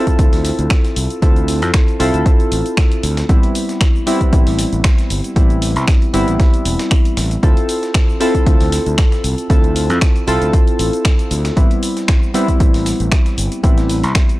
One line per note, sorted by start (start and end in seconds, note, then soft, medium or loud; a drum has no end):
0.00 1.19 C4 medium
0.00 1.19 E4 medium
0.00 1.20 F4 medium
0.00 1.20 A4 loud
0.07 kick medium
0.07 closed hi-hat medium
0.07 shaker soft
0.19 0.28 D2 medium
0.19 kick loud
0.19 closed hi-hat medium
0.19 shaker soft
0.33 0.50 D2 medium
0.33 snare soft
0.33 open hi-hat medium
0.33 shaker soft
0.45 snare medium
0.45 closed hi-hat medium
0.45 open hi-hat loud
0.45 shaker medium
0.59 0.67 D2 medium
0.59 closed hi-hat medium
0.59 shaker soft
0.70 finger snap loud
0.70 kick loud
0.70 snare loud
0.70 closed hi-hat medium
0.70 shaker soft
0.84 snare soft
0.84 closed hi-hat soft
0.84 shaker soft
0.96 1.06 C2 medium
0.96 closed hi-hat medium
0.96 open hi-hat loud
0.96 shaker medium
1.10 closed hi-hat medium
1.10 shaker soft
1.22 1.62 D2 medium
1.22 1.97 C4 medium
1.22 1.97 E4 medium
1.22 1.97 F4 medium
1.22 1.97 A4 medium
1.22 kick loud
1.22 closed hi-hat medium
1.22 shaker soft
1.36 closed hi-hat soft
1.36 shaker soft
1.48 open hi-hat loud
1.48 open hi-hat medium
1.48 shaker medium
1.62 1.70 F2 medium
1.62 snare soft
1.62 closed hi-hat soft
1.62 shaker soft
1.74 finger snap loud
1.74 kick loud
1.74 snare loud
1.74 closed hi-hat medium
1.74 shaker soft
1.88 closed hi-hat soft
1.88 shaker soft
2.00 2.09 C2 medium
2.00 3.26 C4 medium
2.00 3.26 E4 medium
2.00 3.26 F4 medium
2.00 3.27 A4 loud
2.00 closed hi-hat medium
2.00 open hi-hat loud
2.00 shaker medium
2.14 2.22 D2 medium
2.14 closed hi-hat medium
2.14 shaker soft
2.26 kick loud
2.26 closed hi-hat medium
2.26 shaker soft
2.40 closed hi-hat soft
2.40 shaker soft
2.52 2.61 A1 medium
2.52 closed hi-hat medium
2.52 open hi-hat loud
2.52 shaker medium
2.66 closed hi-hat soft
2.66 shaker soft
2.77 finger snap loud
2.77 kick loud
2.77 snare loud
2.77 closed hi-hat medium
2.77 shaker soft
2.92 closed hi-hat soft
2.92 shaker soft
3.03 3.22 D2 medium
3.03 closed hi-hat medium
3.03 open hi-hat loud
3.03 shaker medium
3.17 snare medium
3.17 closed hi-hat medium
3.17 shaker soft
3.29 3.39 A1 medium
3.29 4.04 G3 medium
3.29 4.04 B3 medium
3.29 4.04 C4 medium
3.29 4.04 E4 medium
3.29 kick loud
3.29 closed hi-hat medium
3.29 shaker soft
3.43 closed hi-hat soft
3.43 shaker soft
3.55 closed hi-hat medium
3.55 open hi-hat loud
3.55 shaker medium
3.69 snare soft
3.69 closed hi-hat soft
3.69 shaker soft
3.81 finger snap loud
3.81 kick loud
3.81 snare loud
3.81 closed hi-hat medium
3.81 shaker soft
3.95 shaker soft
4.06 5.33 G3 medium
4.06 5.33 B3 medium
4.06 5.33 C4 medium
4.06 5.33 E4 loud
4.06 closed hi-hat medium
4.06 open hi-hat loud
4.06 shaker medium
4.21 kick medium
4.21 closed hi-hat soft
4.21 shaker soft
4.33 4.42 A1 medium
4.33 kick loud
4.33 closed hi-hat medium
4.33 shaker soft
4.47 4.64 A1 medium
4.47 snare soft
4.47 open hi-hat medium
4.47 shaker soft
4.59 snare medium
4.59 closed hi-hat medium
4.59 open hi-hat loud
4.59 shaker medium
4.73 4.81 A1 medium
4.73 closed hi-hat soft
4.73 shaker soft
4.84 finger snap loud
4.84 kick loud
4.84 snare loud
4.84 closed hi-hat medium
4.84 shaker soft
4.98 snare soft
4.98 closed hi-hat soft
4.98 shaker soft
5.10 5.20 G1 medium
5.10 closed hi-hat medium
5.10 open hi-hat loud
5.10 shaker medium
5.24 closed hi-hat soft
5.24 shaker soft
5.36 5.76 A1 medium
5.36 6.11 G3 medium
5.36 6.11 B3 medium
5.36 6.11 C4 medium
5.36 6.11 E4 medium
5.36 kick loud
5.36 closed hi-hat medium
5.36 shaker soft
5.50 closed hi-hat soft
5.50 shaker soft
5.62 open hi-hat medium
5.62 open hi-hat loud
5.62 shaker medium
5.76 5.84 C2 loud
5.76 snare soft
5.76 closed hi-hat soft
5.76 shaker soft
5.88 finger snap loud
5.88 kick loud
5.88 snare loud
5.88 closed hi-hat medium
5.88 shaker soft
6.02 closed hi-hat soft
6.02 shaker soft
6.13 6.23 G1 medium
6.13 7.40 G3 medium
6.13 7.40 B3 medium
6.13 7.40 C4 medium
6.13 7.40 E4 loud
6.13 closed hi-hat medium
6.13 open hi-hat loud
6.13 shaker medium
6.28 6.36 A1 medium
6.28 closed hi-hat soft
6.28 shaker soft
6.40 kick loud
6.40 snare loud
6.40 closed hi-hat medium
6.40 shaker soft
6.54 closed hi-hat soft
6.54 shaker soft
6.65 6.75 E1 medium
6.65 closed hi-hat medium
6.65 open hi-hat loud
6.65 shaker medium
6.79 snare loud
6.79 closed hi-hat soft
6.79 closed hi-hat medium
6.79 shaker soft
6.91 finger snap loud
6.91 kick loud
6.91 closed hi-hat soft
6.91 open hi-hat medium
6.91 shaker soft
7.05 closed hi-hat soft
7.05 closed hi-hat medium
7.05 shaker soft
7.17 7.35 A1 medium
7.17 snare loud
7.17 closed hi-hat medium
7.17 open hi-hat loud
7.17 shaker medium
7.31 closed hi-hat soft
7.31 shaker soft
7.43 7.53 D2 medium
7.43 8.18 C4 medium
7.43 8.18 E4 medium
7.43 8.18 F4 medium
7.43 8.18 A4 medium
7.43 kick loud
7.43 closed hi-hat medium
7.43 shaker soft
7.57 closed hi-hat soft
7.57 shaker soft
7.69 closed hi-hat medium
7.69 open hi-hat loud
7.69 shaker medium
7.83 snare soft
7.83 closed hi-hat soft
7.83 shaker soft
7.94 finger snap loud
7.94 kick loud
7.94 snare loud
7.94 closed hi-hat medium
7.94 shaker soft
8.09 shaker soft
8.20 9.47 C4 medium
8.20 9.47 E4 medium
8.20 9.47 F4 medium
8.20 9.47 A4 loud
8.20 closed hi-hat medium
8.20 open hi-hat loud
8.20 shaker medium
8.35 kick medium
8.35 closed hi-hat soft
8.35 shaker soft
8.46 8.56 D2 medium
8.46 kick loud
8.46 closed hi-hat medium
8.46 shaker soft
8.60 8.77 D2 medium
8.60 snare soft
8.60 open hi-hat medium
8.60 shaker soft
8.72 snare medium
8.72 closed hi-hat medium
8.72 open hi-hat loud
8.72 shaker medium
8.86 8.94 D2 medium
8.86 closed hi-hat soft
8.86 shaker soft
8.98 finger snap loud
8.98 kick loud
8.98 snare loud
8.98 closed hi-hat medium
8.98 shaker soft
9.12 snare soft
9.12 closed hi-hat soft
9.12 shaker soft
9.24 9.34 C2 medium
9.24 closed hi-hat medium
9.24 open hi-hat loud
9.24 shaker medium
9.38 closed hi-hat soft
9.38 shaker soft
9.50 9.90 D2 medium
9.50 10.24 C4 medium
9.50 10.25 E4 medium
9.50 10.25 F4 medium
9.50 10.25 A4 medium
9.50 kick loud
9.50 closed hi-hat medium
9.50 shaker soft
9.64 closed hi-hat soft
9.64 shaker soft
9.76 open hi-hat medium
9.76 shaker medium
9.90 9.98 F2 loud
9.90 snare medium
9.90 closed hi-hat soft
9.90 shaker soft
10.01 finger snap loud
10.01 kick loud
10.01 snare loud
10.01 closed hi-hat medium
10.01 shaker soft
10.16 closed hi-hat soft
10.16 shaker soft
10.27 10.37 C2 medium
10.27 11.54 C4 medium
10.27 11.54 E4 medium
10.27 11.54 F4 medium
10.27 11.54 A4 loud
10.27 closed hi-hat medium
10.27 open hi-hat loud
10.27 shaker medium
10.42 10.50 D2 medium
10.42 closed hi-hat soft
10.42 shaker soft
10.53 kick loud
10.53 closed hi-hat medium
10.53 shaker soft
10.67 closed hi-hat soft
10.67 shaker soft
10.79 10.89 A1 medium
10.79 closed hi-hat medium
10.79 open hi-hat loud
10.79 shaker medium
10.93 closed hi-hat soft
10.93 shaker soft
11.05 finger snap loud
11.05 kick loud
11.05 snare loud
11.05 closed hi-hat medium
11.05 shaker soft
11.19 closed hi-hat soft
11.19 shaker soft
11.31 11.49 D2 medium
11.31 closed hi-hat medium
11.31 open hi-hat loud
11.31 shaker medium
11.45 snare loud
11.45 closed hi-hat medium
11.45 closed hi-hat soft
11.45 shaker soft
11.56 11.66 A1 medium
11.56 12.31 G3 medium
11.56 12.31 B3 medium
11.56 12.32 C4 medium
11.56 12.32 E4 medium
11.56 kick loud
11.56 closed hi-hat medium
11.56 shaker soft
11.71 closed hi-hat soft
11.71 shaker soft
11.83 closed hi-hat medium
11.83 open hi-hat medium
11.83 shaker medium
11.97 snare soft
11.97 closed hi-hat soft
11.97 shaker soft
12.08 finger snap loud
12.08 kick loud
12.08 snare loud
12.08 closed hi-hat medium
12.08 shaker soft
12.23 shaker soft
12.34 13.61 G3 loud
12.34 13.61 B3 medium
12.34 13.61 C4 medium
12.34 13.61 E4 loud
12.34 closed hi-hat medium
12.34 open hi-hat medium
12.34 shaker medium
12.48 kick medium
12.48 closed hi-hat medium
12.48 shaker soft
12.60 12.70 A1 medium
12.60 kick loud
12.60 closed hi-hat medium
12.60 shaker soft
12.74 12.91 A1 medium
12.74 snare soft
12.74 open hi-hat medium
12.74 shaker soft
12.86 snare medium
12.86 closed hi-hat medium
12.86 open hi-hat loud
12.86 shaker medium
13.00 13.08 A1 medium
13.00 closed hi-hat medium
13.00 shaker soft
13.12 finger snap loud
13.12 kick loud
13.12 snare loud
13.12 closed hi-hat medium
13.12 shaker soft
13.26 snare soft
13.26 closed hi-hat soft
13.26 shaker soft
13.38 13.47 G1 medium
13.38 closed hi-hat medium
13.38 open hi-hat loud
13.38 shaker medium
13.52 closed hi-hat soft
13.52 closed hi-hat medium
13.52 shaker soft
13.63 14.04 A1 medium
13.63 14.38 G3 medium
13.63 14.38 B3 medium
13.63 14.38 C4 medium
13.63 14.39 E4 medium
13.63 kick loud
13.63 closed hi-hat medium
13.63 shaker soft
13.78 snare soft
13.78 closed hi-hat soft
13.78 shaker soft
13.89 open hi-hat medium
13.89 open hi-hat loud
13.89 shaker medium
14.04 14.12 C2 loud
14.04 snare soft
14.04 closed hi-hat medium
14.04 shaker soft
14.15 finger snap loud
14.15 kick loud
14.15 snare loud
14.15 closed hi-hat medium
14.15 shaker soft
14.29 closed hi-hat soft
14.29 shaker soft